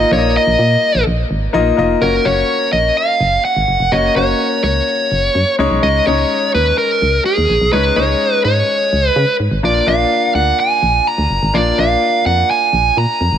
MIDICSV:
0, 0, Header, 1, 4, 480
1, 0, Start_track
1, 0, Tempo, 476190
1, 115, Time_signature, 4, 2, 24, 8
1, 13487, End_track
2, 0, Start_track
2, 0, Title_t, "Lead electric guitar"
2, 0, Program_c, 0, 29
2, 0, Note_on_c, 0, 75, 104
2, 123, Note_off_c, 0, 75, 0
2, 128, Note_on_c, 0, 73, 92
2, 368, Note_off_c, 0, 73, 0
2, 375, Note_on_c, 0, 75, 86
2, 1045, Note_off_c, 0, 75, 0
2, 2032, Note_on_c, 0, 70, 77
2, 2270, Note_on_c, 0, 73, 88
2, 2281, Note_off_c, 0, 70, 0
2, 2743, Note_off_c, 0, 73, 0
2, 2747, Note_on_c, 0, 75, 84
2, 2994, Note_on_c, 0, 77, 95
2, 2998, Note_off_c, 0, 75, 0
2, 3471, Note_off_c, 0, 77, 0
2, 3475, Note_on_c, 0, 78, 98
2, 3952, Note_on_c, 0, 75, 95
2, 3969, Note_off_c, 0, 78, 0
2, 4192, Note_off_c, 0, 75, 0
2, 4196, Note_on_c, 0, 73, 94
2, 4663, Note_off_c, 0, 73, 0
2, 4675, Note_on_c, 0, 73, 80
2, 5595, Note_off_c, 0, 73, 0
2, 5877, Note_on_c, 0, 75, 97
2, 6099, Note_off_c, 0, 75, 0
2, 6117, Note_on_c, 0, 73, 97
2, 6563, Note_off_c, 0, 73, 0
2, 6598, Note_on_c, 0, 71, 87
2, 6820, Note_off_c, 0, 71, 0
2, 6833, Note_on_c, 0, 70, 87
2, 7280, Note_off_c, 0, 70, 0
2, 7313, Note_on_c, 0, 68, 82
2, 7784, Note_off_c, 0, 68, 0
2, 7788, Note_on_c, 0, 71, 84
2, 8028, Note_on_c, 0, 73, 87
2, 8039, Note_off_c, 0, 71, 0
2, 8478, Note_off_c, 0, 73, 0
2, 8513, Note_on_c, 0, 73, 81
2, 9168, Note_off_c, 0, 73, 0
2, 9168, Note_on_c, 0, 71, 81
2, 9433, Note_off_c, 0, 71, 0
2, 9726, Note_on_c, 0, 74, 95
2, 9959, Note_on_c, 0, 77, 92
2, 9968, Note_off_c, 0, 74, 0
2, 10403, Note_off_c, 0, 77, 0
2, 10434, Note_on_c, 0, 78, 94
2, 10679, Note_off_c, 0, 78, 0
2, 10683, Note_on_c, 0, 80, 103
2, 11163, Note_on_c, 0, 82, 99
2, 11173, Note_off_c, 0, 80, 0
2, 11641, Note_on_c, 0, 74, 97
2, 11653, Note_off_c, 0, 82, 0
2, 11883, Note_on_c, 0, 77, 98
2, 11885, Note_off_c, 0, 74, 0
2, 12356, Note_off_c, 0, 77, 0
2, 12360, Note_on_c, 0, 78, 90
2, 12581, Note_off_c, 0, 78, 0
2, 12605, Note_on_c, 0, 80, 99
2, 13085, Note_on_c, 0, 82, 98
2, 13094, Note_off_c, 0, 80, 0
2, 13487, Note_off_c, 0, 82, 0
2, 13487, End_track
3, 0, Start_track
3, 0, Title_t, "Grand piano"
3, 0, Program_c, 1, 0
3, 0, Control_c, 1, 64, 127
3, 0, Note_on_c, 1, 58, 74
3, 0, Note_on_c, 1, 63, 68
3, 0, Note_on_c, 1, 65, 67
3, 0, Note_on_c, 1, 75, 84
3, 111, Note_off_c, 1, 58, 0
3, 111, Note_on_c, 1, 58, 76
3, 116, Note_off_c, 1, 63, 0
3, 116, Note_on_c, 1, 63, 67
3, 122, Note_off_c, 1, 65, 0
3, 122, Note_on_c, 1, 65, 64
3, 126, Note_on_c, 1, 74, 61
3, 178, Note_off_c, 1, 74, 0
3, 182, Note_off_c, 1, 75, 0
3, 182, Note_on_c, 1, 75, 77
3, 974, Note_off_c, 1, 58, 0
3, 976, Note_off_c, 1, 63, 0
3, 979, Note_off_c, 1, 65, 0
3, 1009, Note_off_c, 1, 75, 0
3, 1541, Note_on_c, 1, 58, 79
3, 1546, Note_on_c, 1, 63, 78
3, 1551, Note_on_c, 1, 65, 74
3, 1554, Note_on_c, 1, 75, 93
3, 1763, Note_off_c, 1, 58, 0
3, 1766, Note_off_c, 1, 63, 0
3, 1768, Note_off_c, 1, 65, 0
3, 1769, Note_off_c, 1, 75, 0
3, 1784, Note_on_c, 1, 58, 75
3, 1788, Note_on_c, 1, 63, 69
3, 1797, Note_on_c, 1, 65, 68
3, 1800, Note_on_c, 1, 75, 86
3, 2005, Note_off_c, 1, 58, 0
3, 2007, Note_off_c, 1, 63, 0
3, 2011, Note_off_c, 1, 65, 0
3, 2013, Note_off_c, 1, 75, 0
3, 2031, Note_on_c, 1, 58, 66
3, 2031, Note_on_c, 1, 61, 64
3, 2037, Note_on_c, 1, 66, 63
3, 2040, Note_on_c, 1, 73, 74
3, 2048, Control_c, 1, 64, 0
3, 2234, Control_c, 1, 64, 127
3, 2248, Note_off_c, 1, 58, 0
3, 2248, Note_off_c, 1, 61, 0
3, 2251, Note_off_c, 1, 66, 0
3, 2253, Note_off_c, 1, 73, 0
3, 2267, Note_on_c, 1, 58, 70
3, 2273, Note_on_c, 1, 61, 67
3, 2274, Note_on_c, 1, 66, 61
3, 2278, Note_on_c, 1, 73, 76
3, 3132, Note_off_c, 1, 58, 0
3, 3135, Note_off_c, 1, 61, 0
3, 3135, Note_off_c, 1, 66, 0
3, 3137, Note_off_c, 1, 73, 0
3, 3948, Note_on_c, 1, 58, 66
3, 3953, Note_on_c, 1, 61, 61
3, 3954, Note_on_c, 1, 66, 64
3, 3960, Note_on_c, 1, 73, 79
3, 4167, Note_off_c, 1, 58, 0
3, 4169, Note_off_c, 1, 61, 0
3, 4169, Note_off_c, 1, 66, 0
3, 4173, Note_off_c, 1, 73, 0
3, 4190, Note_on_c, 1, 58, 70
3, 4196, Note_on_c, 1, 61, 66
3, 4199, Note_on_c, 1, 66, 68
3, 4203, Note_on_c, 1, 73, 81
3, 5053, Note_off_c, 1, 58, 0
3, 5056, Note_off_c, 1, 61, 0
3, 5058, Note_off_c, 1, 66, 0
3, 5060, Note_off_c, 1, 73, 0
3, 5630, Note_on_c, 1, 56, 83
3, 5632, Note_on_c, 1, 61, 79
3, 5637, Note_on_c, 1, 63, 75
3, 5643, Note_on_c, 1, 73, 93
3, 5650, Control_c, 1, 64, 0
3, 5839, Control_c, 1, 64, 127
3, 6063, Note_off_c, 1, 56, 0
3, 6064, Note_off_c, 1, 61, 0
3, 6066, Note_off_c, 1, 63, 0
3, 6069, Note_off_c, 1, 73, 0
3, 6114, Note_on_c, 1, 56, 71
3, 6119, Note_on_c, 1, 61, 66
3, 6124, Note_on_c, 1, 63, 67
3, 6127, Note_on_c, 1, 73, 80
3, 6975, Note_off_c, 1, 56, 0
3, 6978, Note_off_c, 1, 61, 0
3, 6980, Note_off_c, 1, 63, 0
3, 6982, Note_off_c, 1, 73, 0
3, 7784, Note_on_c, 1, 56, 69
3, 7787, Note_on_c, 1, 61, 60
3, 7789, Note_on_c, 1, 63, 60
3, 7796, Note_on_c, 1, 73, 78
3, 8004, Note_off_c, 1, 56, 0
3, 8006, Note_off_c, 1, 61, 0
3, 8007, Note_off_c, 1, 63, 0
3, 8011, Note_off_c, 1, 73, 0
3, 8023, Note_on_c, 1, 56, 72
3, 8026, Note_on_c, 1, 61, 65
3, 8032, Note_on_c, 1, 63, 66
3, 8035, Note_on_c, 1, 73, 78
3, 8890, Note_off_c, 1, 56, 0
3, 8891, Note_off_c, 1, 61, 0
3, 8894, Note_off_c, 1, 63, 0
3, 8896, Note_off_c, 1, 73, 0
3, 9707, Note_on_c, 1, 58, 67
3, 9711, Note_on_c, 1, 62, 63
3, 9715, Note_on_c, 1, 74, 74
3, 9716, Note_on_c, 1, 65, 64
3, 9728, Control_c, 1, 64, 0
3, 9924, Control_c, 1, 64, 127
3, 9926, Note_off_c, 1, 58, 0
3, 9928, Note_off_c, 1, 62, 0
3, 9930, Note_off_c, 1, 65, 0
3, 9930, Note_off_c, 1, 74, 0
3, 9943, Note_on_c, 1, 58, 74
3, 9951, Note_on_c, 1, 62, 66
3, 9952, Note_on_c, 1, 65, 67
3, 9958, Note_on_c, 1, 74, 79
3, 10810, Note_off_c, 1, 58, 0
3, 10814, Note_off_c, 1, 62, 0
3, 10814, Note_off_c, 1, 65, 0
3, 10817, Note_off_c, 1, 74, 0
3, 11628, Note_on_c, 1, 58, 67
3, 11630, Note_on_c, 1, 62, 63
3, 11634, Note_on_c, 1, 65, 62
3, 11639, Note_on_c, 1, 74, 75
3, 11847, Note_off_c, 1, 58, 0
3, 11847, Note_off_c, 1, 62, 0
3, 11849, Note_off_c, 1, 65, 0
3, 11852, Note_off_c, 1, 74, 0
3, 11872, Note_on_c, 1, 58, 73
3, 11879, Note_on_c, 1, 62, 66
3, 11882, Note_on_c, 1, 65, 65
3, 11884, Note_on_c, 1, 74, 79
3, 12734, Note_off_c, 1, 58, 0
3, 12738, Note_off_c, 1, 62, 0
3, 12739, Note_off_c, 1, 65, 0
3, 12740, Note_off_c, 1, 74, 0
3, 13487, End_track
4, 0, Start_track
4, 0, Title_t, "FM bass"
4, 0, Program_c, 2, 39
4, 117, Note_on_c, 2, 34, 111
4, 386, Note_off_c, 2, 34, 0
4, 475, Note_on_c, 2, 34, 90
4, 565, Note_off_c, 2, 34, 0
4, 593, Note_on_c, 2, 46, 99
4, 773, Note_off_c, 2, 46, 0
4, 957, Note_on_c, 2, 34, 88
4, 1046, Note_off_c, 2, 34, 0
4, 1080, Note_on_c, 2, 34, 102
4, 1258, Note_off_c, 2, 34, 0
4, 1316, Note_on_c, 2, 32, 89
4, 1496, Note_off_c, 2, 32, 0
4, 1556, Note_on_c, 2, 34, 99
4, 1736, Note_off_c, 2, 34, 0
4, 1796, Note_on_c, 2, 29, 92
4, 1976, Note_off_c, 2, 29, 0
4, 2034, Note_on_c, 2, 30, 99
4, 2214, Note_off_c, 2, 30, 0
4, 2274, Note_on_c, 2, 30, 99
4, 2455, Note_off_c, 2, 30, 0
4, 2752, Note_on_c, 2, 34, 94
4, 2933, Note_off_c, 2, 34, 0
4, 3230, Note_on_c, 2, 30, 104
4, 3412, Note_off_c, 2, 30, 0
4, 3594, Note_on_c, 2, 32, 92
4, 3684, Note_off_c, 2, 32, 0
4, 3711, Note_on_c, 2, 30, 83
4, 3803, Note_off_c, 2, 30, 0
4, 3832, Note_on_c, 2, 29, 89
4, 3923, Note_off_c, 2, 29, 0
4, 3952, Note_on_c, 2, 30, 102
4, 4133, Note_off_c, 2, 30, 0
4, 4192, Note_on_c, 2, 30, 88
4, 4373, Note_off_c, 2, 30, 0
4, 4671, Note_on_c, 2, 37, 84
4, 4853, Note_off_c, 2, 37, 0
4, 5157, Note_on_c, 2, 30, 87
4, 5336, Note_off_c, 2, 30, 0
4, 5395, Note_on_c, 2, 42, 94
4, 5485, Note_off_c, 2, 42, 0
4, 5635, Note_on_c, 2, 37, 88
4, 5725, Note_off_c, 2, 37, 0
4, 5756, Note_on_c, 2, 35, 90
4, 5846, Note_off_c, 2, 35, 0
4, 5876, Note_on_c, 2, 37, 112
4, 6055, Note_off_c, 2, 37, 0
4, 6120, Note_on_c, 2, 37, 93
4, 6298, Note_off_c, 2, 37, 0
4, 6599, Note_on_c, 2, 39, 89
4, 6778, Note_off_c, 2, 39, 0
4, 7077, Note_on_c, 2, 37, 95
4, 7256, Note_off_c, 2, 37, 0
4, 7436, Note_on_c, 2, 39, 91
4, 7526, Note_off_c, 2, 39, 0
4, 7558, Note_on_c, 2, 34, 87
4, 7646, Note_off_c, 2, 34, 0
4, 7676, Note_on_c, 2, 35, 91
4, 7765, Note_off_c, 2, 35, 0
4, 7796, Note_on_c, 2, 37, 104
4, 7976, Note_off_c, 2, 37, 0
4, 8035, Note_on_c, 2, 37, 89
4, 8215, Note_off_c, 2, 37, 0
4, 8515, Note_on_c, 2, 44, 90
4, 8695, Note_off_c, 2, 44, 0
4, 8999, Note_on_c, 2, 37, 86
4, 9177, Note_off_c, 2, 37, 0
4, 9234, Note_on_c, 2, 49, 108
4, 9324, Note_off_c, 2, 49, 0
4, 9473, Note_on_c, 2, 44, 79
4, 9564, Note_off_c, 2, 44, 0
4, 9590, Note_on_c, 2, 32, 98
4, 9682, Note_off_c, 2, 32, 0
4, 9710, Note_on_c, 2, 34, 106
4, 9892, Note_off_c, 2, 34, 0
4, 9951, Note_on_c, 2, 34, 89
4, 10132, Note_off_c, 2, 34, 0
4, 10430, Note_on_c, 2, 38, 82
4, 10612, Note_off_c, 2, 38, 0
4, 10913, Note_on_c, 2, 34, 91
4, 11093, Note_off_c, 2, 34, 0
4, 11271, Note_on_c, 2, 38, 91
4, 11362, Note_off_c, 2, 38, 0
4, 11394, Note_on_c, 2, 30, 77
4, 11484, Note_off_c, 2, 30, 0
4, 11518, Note_on_c, 2, 32, 99
4, 11607, Note_off_c, 2, 32, 0
4, 11636, Note_on_c, 2, 34, 106
4, 11815, Note_off_c, 2, 34, 0
4, 11879, Note_on_c, 2, 34, 92
4, 12058, Note_off_c, 2, 34, 0
4, 12355, Note_on_c, 2, 41, 82
4, 12535, Note_off_c, 2, 41, 0
4, 12833, Note_on_c, 2, 34, 87
4, 13013, Note_off_c, 2, 34, 0
4, 13074, Note_on_c, 2, 46, 98
4, 13165, Note_off_c, 2, 46, 0
4, 13313, Note_on_c, 2, 41, 92
4, 13404, Note_off_c, 2, 41, 0
4, 13431, Note_on_c, 2, 32, 87
4, 13487, Note_off_c, 2, 32, 0
4, 13487, End_track
0, 0, End_of_file